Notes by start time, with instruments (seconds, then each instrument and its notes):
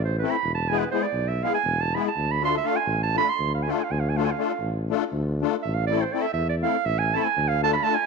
Already playing: tuba A1
0.05 clarinet C5
0.19 accordion A3 C4, clarinet B4
0.23 accordion E4 A4
0.30 clarinet B5
0.43 tuba E1
0.55 clarinet A5
0.69 accordion G#3 B3 E4 G#4, clarinet G#5
0.79 clarinet B4
0.91 accordion G#3 B3 E4 G#4, clarinet C5
1.03 clarinet D5
1.12 tuba B1
1.28 clarinet E5
1.42 accordion G#3 B3 E4 G#4, clarinet F5
1.54 clarinet G#5
1.64 tuba E1
1.81 clarinet A5
1.93 accordion G#3 B3 E4 G#4, clarinet B5
2.08 clarinet A5
2.17 tuba D2
2.31 clarinet B5
2.41 accordion A3 D4 F4 A4, clarinet C6
2.57 clarinet E5
2.63 accordion A3 D4 F4 A4, clarinet F5
2.76 clarinet G#5
2.86 tuba A1
3.03 clarinet A5
3.14 accordion A3 D4 F4 A4, clarinet B5
3.29 clarinet C6
3.39 tuba D2
3.54 clarinet F5
3.63 accordion A3, clarinet G#5
3.67 accordion D4 F4 A4, clarinet F5
3.79 clarinet G#5
3.84 clarinet F5
3.91 tuba D2, clarinet G#5
4.00 clarinet F5
4.10 clarinet G#5
4.15 accordion A3 D4 F4 A4, clarinet F5
4.25 clarinet G#5
4.31 clarinet F5
4.38 accordion A3 D4 F4 A4
4.59 tuba A1
4.90 accordion A3 D4 F4 A4
5.12 tuba D2
5.41 accordion A3 D4 F4 A4
5.62 tuba A1, clarinet E5
5.75 clarinet F5
5.87 accordion A3 C4 E4, clarinet D5
5.92 accordion A4
6.01 clarinet C5
6.13 accordion A3 C4 E4 A4, clarinet D5
6.22 clarinet E5
6.33 tuba E2, clarinet E5
6.49 clarinet D5
6.62 accordion A3 C4 E4 A4, clarinet F5
6.85 tuba A1, clarinet E5
6.99 clarinet G#5
7.13 accordion A3 C4 E4 A4, clarinet A5 B5
7.20 clarinet A5
7.24 clarinet G#5
7.37 tuba D2
7.48 clarinet F5
7.62 accordion A3 D4 F4 A4, clarinet A5
7.73 clarinet B5
7.82 accordion A3 D4 F4 A4, clarinet A5
7.95 clarinet G#5